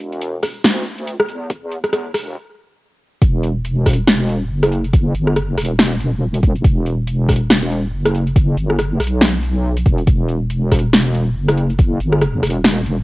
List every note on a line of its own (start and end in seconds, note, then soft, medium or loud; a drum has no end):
0.00 0.63 E1 loud
0.00 closed hi-hat medium
0.13 closed hi-hat medium
0.22 closed hi-hat medium
0.43 kick medium
0.43 cross-stick medium
0.43 open hi-hat medium
0.65 1.27 D2 medium
0.65 snare loud
0.65 closed hi-hat medium
0.98 closed hi-hat medium
1.07 closed hi-hat medium
1.20 cross-stick medium
1.29 2.13 E2 loud
1.29 closed hi-hat medium
1.50 kick loud
1.50 closed hi-hat medium
1.72 closed hi-hat soft
1.84 cross-stick medium
1.84 closed hi-hat medium
1.93 cross-stick medium
1.93 closed hi-hat medium
2.14 2.36 E1 loud
2.14 cross-stick medium
2.14 open hi-hat medium
3.22 4.49 E1 medium
3.22 kick loud
3.22 closed hi-hat medium
3.43 closed hi-hat medium
3.65 closed hi-hat medium
3.86 kick medium
3.86 cross-stick medium
3.86 open hi-hat loud
3.90 closed hi-hat medium
3.93 closed hi-hat medium
4.07 snare loud
4.07 closed hi-hat medium
4.29 closed hi-hat medium
4.50 5.13 F#1 loud
4.63 cross-stick medium
4.63 closed hi-hat medium
4.72 closed hi-hat medium
4.84 closed hi-hat soft
4.93 kick loud
4.93 closed hi-hat medium
5.15 5.56 G1 medium
5.15 closed hi-hat medium
5.27 cross-stick medium
5.36 cross-stick medium
5.36 closed hi-hat medium
5.58 5.99 E1 medium
5.58 cross-stick medium
5.58 open hi-hat loud
5.62 closed hi-hat medium
5.65 closed hi-hat medium
5.79 snare loud
5.79 closed hi-hat medium
6.00 6.63 E1 loud
6.00 closed hi-hat medium
6.34 closed hi-hat medium
6.43 kick loud
6.43 closed hi-hat medium
6.56 closed hi-hat soft
6.64 7.92 E1 loud
6.64 kick loud
6.64 closed hi-hat medium
6.86 closed hi-hat medium
7.07 closed hi-hat medium
7.29 kick medium
7.29 cross-stick medium
7.29 open hi-hat medium
7.33 closed hi-hat medium
7.36 closed hi-hat medium
7.50 snare loud
7.50 closed hi-hat medium
7.72 closed hi-hat medium
7.93 8.56 F#1 loud
8.05 cross-stick medium
8.05 closed hi-hat medium
8.15 closed hi-hat medium
8.27 closed hi-hat soft
8.36 kick loud
8.36 closed hi-hat medium
8.57 8.99 G1 medium
8.57 closed hi-hat medium
8.70 cross-stick medium
8.79 cross-stick medium
8.79 closed hi-hat medium
9.00 9.85 B1 loud
9.00 cross-stick medium
9.00 closed hi-hat medium
9.00 open hi-hat medium
9.07 closed hi-hat medium
9.21 snare loud
9.21 closed hi-hat medium
9.43 closed hi-hat medium
9.77 closed hi-hat medium
9.86 10.06 E1 loud
9.86 kick loud
9.86 closed hi-hat medium
9.98 closed hi-hat soft
10.07 11.35 E1 medium
10.07 kick loud
10.07 closed hi-hat medium
10.29 closed hi-hat soft
10.50 closed hi-hat medium
10.72 kick medium
10.72 cross-stick medium
10.72 open hi-hat medium
10.76 closed hi-hat medium
10.79 closed hi-hat medium
10.93 snare loud
10.93 closed hi-hat medium
11.14 closed hi-hat medium
11.36 11.99 F#1 loud
11.48 cross-stick medium
11.48 closed hi-hat medium
11.57 closed hi-hat medium
11.70 closed hi-hat soft
11.79 kick loud
11.79 closed hi-hat medium
12.00 12.42 G1 medium
12.00 closed hi-hat soft
12.12 cross-stick medium
12.22 cross-stick medium
12.22 closed hi-hat medium
12.43 12.85 E1 loud
12.43 cross-stick medium
12.43 open hi-hat medium
12.47 closed hi-hat medium
12.50 closed hi-hat medium
12.64 snare loud
12.64 closed hi-hat medium
12.86 13.04 E1 loud
12.86 closed hi-hat medium